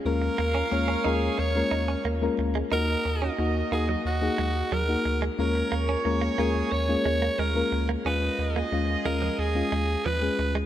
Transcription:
<<
  \new Staff \with { instrumentName = "Alto saxophone" } { \time 4/4 \key bes \phrygian \tempo 4 = 90 bes'4. aes'8 des''4 r4 | bes'4 r8 aes'8 ges'4 bes'8. r16 | bes'4 r8 aes'8 des''4 bes'8. r16 | ces''4 r8 bes'8 aes'4 ces''8. r16 | }
  \new Staff \with { instrumentName = "Horn section" } { \time 4/4 \key bes \phrygian <bes' des'' f''>2.~ <bes' des'' f''>8 r8 | <ges' bes' ees''>2.~ <ges' bes' ees''>8 r8 | <aes' bes' des''>2.~ <aes' bes' des''>8 r8 | <f' aes' ees''>2.~ <f' aes' ees''>8 r8 | }
  \new Staff \with { instrumentName = "FM electric piano" } { \time 4/4 \key bes \phrygian <aes bes des' f' bes'>8. r16 <aes bes des' f' des''>16 r16 <aes bes des' f' bes'>8 r16 <aes bes des' f' bes'>8. r16 <aes bes des' f' bes'>8 r16 | <bes ees' ges'>8. r16 <bes ees' ges'>16 r16 <bes ees' ges'>8 r16 <bes ees' aes'>8. r16 <bes ees' ges'>8 r16 | <aes bes des' f' bes'>8. r16 <aes bes des' f' bes'>16 r16 <aes bes des' f' bes'>8 r16 <aes bes des' f' aes'>8. r16 <aes bes des' f' bes'>8 r16 | <aes des' f'>8. r16 <aes des' f'>16 r16 <aes des' f'>8 r16 <aes des' f'>8. r16 <aes des' aes'>8 r16 | }
  \new Staff \with { instrumentName = "Clean electric guitar" } { \time 4/4 \key bes \phrygian r8 bes16 des'16 r16 des'16 ees'16 r8. ees'16 des'16 bes16 r8 aes16 | ees'16 r8 des'16 r8 bes16 ges16 r8 aes16 r16 ges16 r8 aes16 | r8 bes16 des'16 r16 bes16 bes16 r8. aes16 bes16 aes16 r8 bes16 | des'16 r8 bes16 r8 aes16 f16 r8 aes16 r16 f16 r8 aes16 | }
  \new Staff \with { instrumentName = "Analog synth bass" } { \clef bass \time 4/4 \key bes \phrygian ees,8 ees,8 ees,8 ees,8 ees,8 ees,8 ees,8 d,8 | ees,8 ees,8 ees,8 ees,8 ees,8 ees,8 ees,8 d,8 | ees,8 ees,8 ees,8 ees,8 ees,8 ees,8 ees,8 d,8 | ees,8 ees,8 ees,8 ees,8 ees,8 ees,8 ees,8 d,8 | }
>>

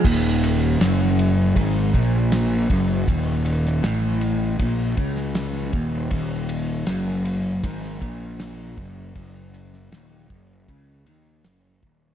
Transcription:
<<
  \new Staff \with { instrumentName = "Clean electric guitar" } { \clef bass \time 4/4 \key c \phrygian \tempo 4 = 79 ees,4 ges,4 aes,8 bes,4 ges,8 | ees,4 a,4 bes,8 des4 ees,8 | ees,4 ges,4 aes,8 bes,4 ges,8 | ges,4 ees,8 ges,8 des8 ees8 ges,8 ees,8 | }
  \new Staff \with { instrumentName = "Picked electric bass" } { \clef bass \time 4/4 \key c \phrygian ees,,4 ges,,4 aes,,8 bes,,4 ges,,8 | ees,,4 a,,4 bes,,8 des,4 ees,,8 | ees,,4 ges,,4 aes,,8 bes,,4 ges,,8 | ges,,4 ees,,8 ges,,8 des,8 ees,8 ges,,8 ees,,8 | }
  \new DrumStaff \with { instrumentName = "Drums" } \drummode { \time 4/4 <cymc bd>8 cymr8 <cymr sn>8 cymr8 <bd cymr>8 <bd cymr>8 <cymr sn>8 <bd cymr>8 | <bd cymr>8 cymr16 sn16 <cymr sn>8 cymr8 <bd cymr>8 <bd cymr>16 sn16 <cymr sn>8 <bd cymr>8 | <bd cymr>8 cymr8 <cymr sn>8 cymr8 <bd cymr>16 sn16 <bd cymr>8 <cymr sn>8 <bd cymr>8 | <bd cymr>8 cymr16 sn16 <cymr sn>8 <bd cymr>8 <bd cymr>8 cymr8 <cymr sn>8 <bd cymr>8 | }
>>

